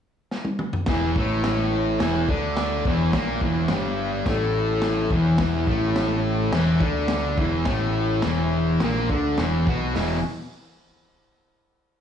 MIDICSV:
0, 0, Header, 1, 4, 480
1, 0, Start_track
1, 0, Key_signature, 1, "minor"
1, 0, Tempo, 564972
1, 749, Time_signature, 4, 2, 24, 8
1, 5070, Tempo, 570342
1, 10154, End_track
2, 0, Start_track
2, 0, Title_t, "Distorted electric guitar"
2, 0, Program_c, 0, 30
2, 745, Note_on_c, 0, 40, 89
2, 757, Note_on_c, 0, 52, 104
2, 980, Note_off_c, 0, 40, 0
2, 986, Note_off_c, 0, 52, 0
2, 999, Note_on_c, 0, 45, 100
2, 1009, Note_on_c, 0, 57, 101
2, 1694, Note_on_c, 0, 40, 86
2, 1706, Note_off_c, 0, 45, 0
2, 1706, Note_on_c, 0, 52, 100
2, 1711, Note_off_c, 0, 57, 0
2, 1934, Note_off_c, 0, 40, 0
2, 1940, Note_off_c, 0, 52, 0
2, 1941, Note_on_c, 0, 50, 96
2, 1954, Note_on_c, 0, 62, 104
2, 2417, Note_off_c, 0, 50, 0
2, 2423, Note_off_c, 0, 62, 0
2, 2429, Note_on_c, 0, 40, 92
2, 2438, Note_on_c, 0, 52, 103
2, 2654, Note_on_c, 0, 46, 100
2, 2661, Note_off_c, 0, 40, 0
2, 2665, Note_off_c, 0, 52, 0
2, 2671, Note_on_c, 0, 58, 108
2, 2893, Note_off_c, 0, 46, 0
2, 2896, Note_on_c, 0, 40, 94
2, 2902, Note_off_c, 0, 58, 0
2, 2911, Note_on_c, 0, 52, 109
2, 3155, Note_off_c, 0, 40, 0
2, 3155, Note_on_c, 0, 43, 95
2, 3159, Note_off_c, 0, 52, 0
2, 3159, Note_on_c, 0, 55, 99
2, 3620, Note_on_c, 0, 45, 88
2, 3624, Note_off_c, 0, 43, 0
2, 3626, Note_off_c, 0, 55, 0
2, 3630, Note_on_c, 0, 57, 109
2, 4338, Note_off_c, 0, 45, 0
2, 4341, Note_on_c, 0, 40, 89
2, 4343, Note_off_c, 0, 57, 0
2, 4356, Note_on_c, 0, 52, 93
2, 4578, Note_off_c, 0, 40, 0
2, 4586, Note_off_c, 0, 52, 0
2, 4588, Note_on_c, 0, 40, 97
2, 4599, Note_on_c, 0, 52, 103
2, 4813, Note_on_c, 0, 45, 102
2, 4822, Note_off_c, 0, 40, 0
2, 4827, Note_on_c, 0, 57, 99
2, 4828, Note_off_c, 0, 52, 0
2, 5533, Note_off_c, 0, 45, 0
2, 5537, Note_on_c, 0, 40, 90
2, 5541, Note_off_c, 0, 57, 0
2, 5551, Note_on_c, 0, 52, 108
2, 5767, Note_on_c, 0, 50, 89
2, 5775, Note_off_c, 0, 40, 0
2, 5780, Note_on_c, 0, 62, 97
2, 5782, Note_off_c, 0, 52, 0
2, 6249, Note_off_c, 0, 50, 0
2, 6256, Note_off_c, 0, 62, 0
2, 6258, Note_on_c, 0, 40, 100
2, 6266, Note_on_c, 0, 52, 97
2, 6495, Note_off_c, 0, 40, 0
2, 6495, Note_on_c, 0, 45, 91
2, 6499, Note_off_c, 0, 52, 0
2, 6506, Note_on_c, 0, 57, 111
2, 6974, Note_off_c, 0, 45, 0
2, 6977, Note_on_c, 0, 40, 96
2, 6979, Note_off_c, 0, 57, 0
2, 6992, Note_on_c, 0, 52, 107
2, 7454, Note_off_c, 0, 40, 0
2, 7458, Note_on_c, 0, 46, 91
2, 7462, Note_off_c, 0, 52, 0
2, 7466, Note_on_c, 0, 58, 109
2, 7695, Note_off_c, 0, 46, 0
2, 7699, Note_off_c, 0, 58, 0
2, 7704, Note_on_c, 0, 50, 93
2, 7715, Note_on_c, 0, 62, 97
2, 7938, Note_off_c, 0, 50, 0
2, 7944, Note_off_c, 0, 62, 0
2, 7946, Note_on_c, 0, 40, 87
2, 7957, Note_on_c, 0, 52, 96
2, 8178, Note_on_c, 0, 47, 83
2, 8179, Note_off_c, 0, 40, 0
2, 8185, Note_off_c, 0, 52, 0
2, 8197, Note_on_c, 0, 59, 98
2, 8416, Note_off_c, 0, 47, 0
2, 8425, Note_off_c, 0, 59, 0
2, 8433, Note_on_c, 0, 47, 106
2, 8434, Note_on_c, 0, 40, 97
2, 8443, Note_on_c, 0, 52, 100
2, 8622, Note_off_c, 0, 47, 0
2, 8623, Note_off_c, 0, 40, 0
2, 8627, Note_off_c, 0, 52, 0
2, 10154, End_track
3, 0, Start_track
3, 0, Title_t, "Picked electric bass"
3, 0, Program_c, 1, 34
3, 743, Note_on_c, 1, 28, 99
3, 969, Note_off_c, 1, 28, 0
3, 982, Note_on_c, 1, 33, 99
3, 1670, Note_off_c, 1, 33, 0
3, 1698, Note_on_c, 1, 28, 88
3, 1925, Note_off_c, 1, 28, 0
3, 1940, Note_on_c, 1, 38, 91
3, 2389, Note_off_c, 1, 38, 0
3, 2428, Note_on_c, 1, 28, 97
3, 2651, Note_off_c, 1, 28, 0
3, 2659, Note_on_c, 1, 34, 94
3, 2886, Note_off_c, 1, 34, 0
3, 2897, Note_on_c, 1, 28, 99
3, 3125, Note_off_c, 1, 28, 0
3, 3135, Note_on_c, 1, 31, 95
3, 3587, Note_off_c, 1, 31, 0
3, 3619, Note_on_c, 1, 33, 98
3, 4311, Note_off_c, 1, 33, 0
3, 4339, Note_on_c, 1, 28, 91
3, 4567, Note_off_c, 1, 28, 0
3, 4575, Note_on_c, 1, 28, 95
3, 4806, Note_off_c, 1, 28, 0
3, 4818, Note_on_c, 1, 33, 94
3, 5510, Note_off_c, 1, 33, 0
3, 5539, Note_on_c, 1, 28, 97
3, 5766, Note_off_c, 1, 28, 0
3, 5779, Note_on_c, 1, 38, 100
3, 6229, Note_off_c, 1, 38, 0
3, 6254, Note_on_c, 1, 28, 91
3, 6483, Note_off_c, 1, 28, 0
3, 6496, Note_on_c, 1, 33, 93
3, 6948, Note_off_c, 1, 33, 0
3, 6979, Note_on_c, 1, 28, 90
3, 7429, Note_off_c, 1, 28, 0
3, 7460, Note_on_c, 1, 34, 91
3, 7686, Note_off_c, 1, 34, 0
3, 7704, Note_on_c, 1, 38, 91
3, 7929, Note_off_c, 1, 38, 0
3, 7947, Note_on_c, 1, 28, 106
3, 8171, Note_off_c, 1, 28, 0
3, 8186, Note_on_c, 1, 35, 90
3, 8410, Note_off_c, 1, 35, 0
3, 8429, Note_on_c, 1, 28, 95
3, 8652, Note_off_c, 1, 28, 0
3, 10154, End_track
4, 0, Start_track
4, 0, Title_t, "Drums"
4, 267, Note_on_c, 9, 38, 66
4, 352, Note_off_c, 9, 38, 0
4, 379, Note_on_c, 9, 48, 81
4, 464, Note_off_c, 9, 48, 0
4, 500, Note_on_c, 9, 47, 91
4, 585, Note_off_c, 9, 47, 0
4, 621, Note_on_c, 9, 43, 99
4, 706, Note_off_c, 9, 43, 0
4, 733, Note_on_c, 9, 38, 113
4, 736, Note_on_c, 9, 49, 62
4, 745, Note_on_c, 9, 36, 116
4, 818, Note_off_c, 9, 38, 0
4, 821, Note_off_c, 9, 49, 0
4, 830, Note_off_c, 9, 36, 0
4, 984, Note_on_c, 9, 36, 108
4, 1069, Note_off_c, 9, 36, 0
4, 1222, Note_on_c, 9, 38, 115
4, 1225, Note_on_c, 9, 49, 69
4, 1307, Note_off_c, 9, 38, 0
4, 1309, Note_off_c, 9, 49, 0
4, 1701, Note_on_c, 9, 38, 120
4, 1704, Note_on_c, 9, 49, 73
4, 1786, Note_off_c, 9, 38, 0
4, 1789, Note_off_c, 9, 49, 0
4, 1942, Note_on_c, 9, 36, 109
4, 2027, Note_off_c, 9, 36, 0
4, 2180, Note_on_c, 9, 38, 110
4, 2183, Note_on_c, 9, 49, 65
4, 2265, Note_off_c, 9, 38, 0
4, 2267, Note_off_c, 9, 49, 0
4, 2424, Note_on_c, 9, 36, 118
4, 2509, Note_off_c, 9, 36, 0
4, 2662, Note_on_c, 9, 38, 118
4, 2663, Note_on_c, 9, 36, 109
4, 2664, Note_on_c, 9, 49, 59
4, 2747, Note_off_c, 9, 38, 0
4, 2748, Note_off_c, 9, 36, 0
4, 2749, Note_off_c, 9, 49, 0
4, 2900, Note_on_c, 9, 36, 110
4, 2985, Note_off_c, 9, 36, 0
4, 3130, Note_on_c, 9, 38, 119
4, 3132, Note_on_c, 9, 49, 62
4, 3215, Note_off_c, 9, 38, 0
4, 3217, Note_off_c, 9, 49, 0
4, 3619, Note_on_c, 9, 36, 115
4, 3621, Note_on_c, 9, 38, 120
4, 3624, Note_on_c, 9, 49, 62
4, 3704, Note_off_c, 9, 36, 0
4, 3706, Note_off_c, 9, 38, 0
4, 3709, Note_off_c, 9, 49, 0
4, 4093, Note_on_c, 9, 38, 110
4, 4096, Note_on_c, 9, 49, 60
4, 4178, Note_off_c, 9, 38, 0
4, 4181, Note_off_c, 9, 49, 0
4, 4337, Note_on_c, 9, 36, 111
4, 4422, Note_off_c, 9, 36, 0
4, 4573, Note_on_c, 9, 38, 124
4, 4575, Note_on_c, 9, 49, 59
4, 4578, Note_on_c, 9, 36, 106
4, 4658, Note_off_c, 9, 38, 0
4, 4660, Note_off_c, 9, 49, 0
4, 4663, Note_off_c, 9, 36, 0
4, 4819, Note_on_c, 9, 36, 114
4, 4904, Note_off_c, 9, 36, 0
4, 5063, Note_on_c, 9, 38, 115
4, 5065, Note_on_c, 9, 49, 68
4, 5147, Note_off_c, 9, 38, 0
4, 5150, Note_off_c, 9, 49, 0
4, 5540, Note_on_c, 9, 38, 124
4, 5542, Note_on_c, 9, 49, 68
4, 5624, Note_off_c, 9, 38, 0
4, 5626, Note_off_c, 9, 49, 0
4, 5775, Note_on_c, 9, 36, 117
4, 5859, Note_off_c, 9, 36, 0
4, 6008, Note_on_c, 9, 38, 122
4, 6010, Note_on_c, 9, 49, 62
4, 6092, Note_off_c, 9, 38, 0
4, 6094, Note_off_c, 9, 49, 0
4, 6256, Note_on_c, 9, 36, 120
4, 6340, Note_off_c, 9, 36, 0
4, 6490, Note_on_c, 9, 38, 113
4, 6492, Note_on_c, 9, 49, 65
4, 6495, Note_on_c, 9, 36, 104
4, 6574, Note_off_c, 9, 38, 0
4, 6577, Note_off_c, 9, 49, 0
4, 6579, Note_off_c, 9, 36, 0
4, 6968, Note_on_c, 9, 38, 123
4, 6971, Note_on_c, 9, 49, 66
4, 7052, Note_off_c, 9, 38, 0
4, 7055, Note_off_c, 9, 49, 0
4, 7456, Note_on_c, 9, 38, 117
4, 7459, Note_on_c, 9, 49, 64
4, 7540, Note_off_c, 9, 38, 0
4, 7543, Note_off_c, 9, 49, 0
4, 7703, Note_on_c, 9, 36, 120
4, 7787, Note_off_c, 9, 36, 0
4, 7939, Note_on_c, 9, 38, 106
4, 7942, Note_on_c, 9, 49, 61
4, 8023, Note_off_c, 9, 38, 0
4, 8026, Note_off_c, 9, 49, 0
4, 8185, Note_on_c, 9, 36, 114
4, 8269, Note_off_c, 9, 36, 0
4, 8428, Note_on_c, 9, 38, 101
4, 8431, Note_on_c, 9, 46, 86
4, 8512, Note_off_c, 9, 38, 0
4, 8515, Note_off_c, 9, 46, 0
4, 10154, End_track
0, 0, End_of_file